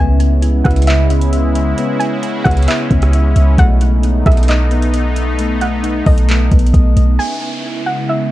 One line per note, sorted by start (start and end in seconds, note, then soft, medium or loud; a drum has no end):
0.00 0.62 C#2 loud
0.00 3.55 C#3 medium
0.00 3.55 G#3 medium
0.00 0.87 B3 loud
0.00 3.54 B3 medium
0.00 1.74 C#4 medium
0.00 3.55 C#4 medium
0.00 3.55 E4 medium
0.00 1.76 B4 medium
0.00 3.55 E5 medium
0.00 0.61 G#5 loud
0.20 closed hi-hat medium
0.42 1.78 E4 loud
0.42 closed hi-hat medium
0.64 1.74 C#2 loud
0.64 2.00 B4 medium
0.64 0.86 F#5 medium
0.64 kick loud
0.64 cross-stick medium
0.64 closed hi-hat soft
0.71 closed hi-hat soft
0.76 closed hi-hat medium
0.82 closed hi-hat medium
0.87 1.77 B3 medium
0.87 1.30 E5 medium
0.87 clap loud
0.87 closed hi-hat medium
1.10 2.46 C#4 medium
1.10 closed hi-hat medium
1.21 closed hi-hat medium
1.33 1.54 E5 medium
1.33 closed hi-hat medium
1.55 2.91 E5 medium
1.55 closed hi-hat medium
1.78 2.67 B3 medium
1.78 3.56 C#4 medium
1.78 3.56 C#5 medium
1.78 closed hi-hat medium
1.99 2.42 G#5 medium
1.99 closed hi-hat medium
2.23 3.58 E4 medium
2.23 closed hi-hat medium
2.44 2.67 C#2 loud
2.44 3.58 B4 medium
2.44 2.66 F#5 medium
2.44 kick loud
2.44 cross-stick medium
2.44 closed hi-hat soft
2.51 closed hi-hat soft
2.57 closed hi-hat medium
2.62 closed hi-hat medium
2.68 3.58 B3 loud
2.68 3.10 E5 medium
2.68 clap loud
2.68 closed hi-hat medium
2.91 3.34 C#2 loud
2.91 3.58 C#4 medium
2.91 kick medium
2.91 closed hi-hat medium
3.02 cross-stick medium
3.02 closed hi-hat medium
3.13 3.35 E5 loud
3.13 closed hi-hat medium
3.36 3.57 C#2 loud
3.36 3.58 E5 medium
3.36 closed hi-hat medium
3.58 4.23 B1 loud
3.58 7.16 A3 medium
3.58 4.47 A3 loud
3.58 7.16 B3 medium
3.58 7.16 D#4 loud
3.58 7.16 A4 medium
3.58 7.16 D#5 medium
3.58 4.22 F#5 loud
3.58 kick loud
3.58 closed hi-hat medium
3.81 closed hi-hat medium
4.03 5.39 D#4 medium
4.03 closed hi-hat medium
4.26 6.02 B1 loud
4.26 5.61 A4 medium
4.26 4.47 E5 medium
4.26 kick loud
4.26 cross-stick loud
4.26 closed hi-hat soft
4.32 closed hi-hat soft
4.37 closed hi-hat medium
4.43 closed hi-hat medium
4.48 5.38 A3 medium
4.48 4.91 D#5 medium
4.48 clap loud
4.48 closed hi-hat medium
4.71 6.06 B3 medium
4.71 closed hi-hat medium
4.82 closed hi-hat medium
4.93 5.15 D#5 medium
4.93 closed hi-hat medium
5.16 6.51 D#5 medium
5.16 closed hi-hat medium
5.39 6.28 A3 medium
5.39 closed hi-hat medium
5.61 6.04 F#5 medium
5.61 closed hi-hat medium
5.83 7.19 D#4 medium
5.83 closed hi-hat medium
6.06 6.50 B1 loud
6.06 7.20 A4 medium
6.06 6.70 D#5 medium
6.06 kick loud
6.06 closed hi-hat soft
6.06 open hi-hat medium
6.18 closed hi-hat medium
6.29 7.19 A3 medium
6.29 clap loud
6.29 closed hi-hat medium
6.51 6.73 B1 loud
6.51 7.19 B3 medium
6.51 kick medium
6.51 closed hi-hat medium
6.59 closed hi-hat medium
6.67 closed hi-hat medium
6.73 6.96 B1 loud
6.73 6.96 D#5 medium
6.73 kick loud
6.73 closed hi-hat medium
6.97 7.18 B1 loud
6.97 7.19 D#5 medium
6.97 closed hi-hat medium
7.19 8.31 C#3 medium
7.19 8.31 G#3 medium
7.19 8.31 B3 medium
7.19 8.31 C#4 medium
7.19 8.31 E4 medium
7.19 8.31 B4 medium
7.19 8.31 E5 medium
7.19 7.83 G#5 loud
7.19 downlifter medium
7.86 8.08 F#5 medium
8.09 8.31 E5 medium